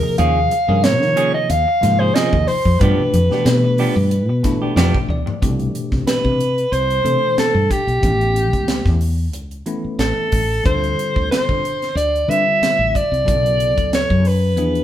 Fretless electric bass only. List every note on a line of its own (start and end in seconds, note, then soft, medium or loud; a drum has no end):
0.19 0.46 D#2 medium
0.69 1.02 G2 medium
1.02 1.42 D#3 medium
1.50 1.64 D#2 medium
1.83 2.10 G#2 medium
2.33 2.45 D#2 medium
2.65 2.78 F2 medium
2.81 2.95 G2 medium
2.98 muted fretless electric bass stroke soft
3.13 3.28 F2 medium
3.45 3.87 B2 medium
3.96 4.29 G2 medium
4.29 4.56 B2 medium
4.76 4.91 F2 medium
5.08 5.23 D2 medium
5.42 5.69 C2 medium
5.92 6.05 C2 medium
6.24 6.64 C3 medium
6.72 6.99 C2 medium
7.05 7.19 C3 medium
7.37 muted fretless electric bass stroke soft
7.54 7.68 G2 medium
7.71 muted fretless electric bass stroke soft
7.87 8.00 B1 medium
8.03 8.53 A1 medium
8.53 8.81 C#2 medium
8.85 9.34 E2 medium
9.34 9.61 C#2 medium
9.84 muted fretless electric bass stroke soft
9.99 10.14 A1 medium
10.32 10.60 A1 medium
10.65 10.92 D2 medium
11.16 11.28 D2 medium
11.49 11.89 D3 medium
11.95 12.23 D2 medium
12.28 12.43 D3 medium
12.61 muted fretless electric bass stroke soft
12.79 12.92 A1 medium
13.12 13.24 C2 medium
13.28 13.77 B1 medium
13.77 14.04 D2 medium
14.10 14.57 F#2 medium
14.57 14.84 E2 medium